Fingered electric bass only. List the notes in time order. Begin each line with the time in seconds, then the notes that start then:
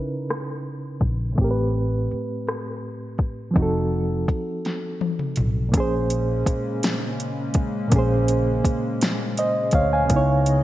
1.02 A#1
1.39 A1
2.13 muted fingered electric bass stroke
3.57 F1
4.29 muted fingered electric bass stroke
5.39 B1
5.75 A#1
6.47 muted fingered electric bass stroke
7.93 A#1
8.66 muted fingered electric bass stroke
9.74 D2
10.11 C#2